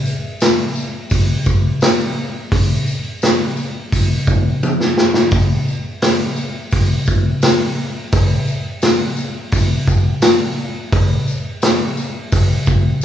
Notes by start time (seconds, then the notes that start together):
0.06 tambourine
0.40 snare, open hi-hat, tambourine
0.75 tambourine
1.10 kick, open hi-hat, tambourine
1.46 kick, tambourine
1.81 snare, open hi-hat, tambourine
2.52 kick, open hi-hat
2.87 tambourine
3.22 snare, open hi-hat, tambourine
3.57 tambourine
3.92 kick, open hi-hat, tambourine
4.27 kick, tambourine
4.63 high tom, tambourine
4.80 snare
4.97 snare, tambourine
5.14 snare
5.31 kick, open hi-hat, tambourine
5.69 tambourine
6.02 snare, open hi-hat, tambourine
6.36 tambourine
6.71 kick, open hi-hat, tambourine
7.06 kick, tambourine
7.42 snare, open hi-hat, tambourine
8.12 kick, open hi-hat, tambourine
8.47 tambourine
8.82 snare, open hi-hat, tambourine
9.17 tambourine
9.52 kick, open hi-hat, tambourine
9.88 kick, tambourine
10.22 snare, open hi-hat, tambourine
10.93 kick, open hi-hat, tambourine
11.28 tambourine
11.62 snare, open hi-hat, tambourine
11.97 tambourine
12.32 kick, open hi-hat, tambourine
12.66 kick, tambourine
13.01 tambourine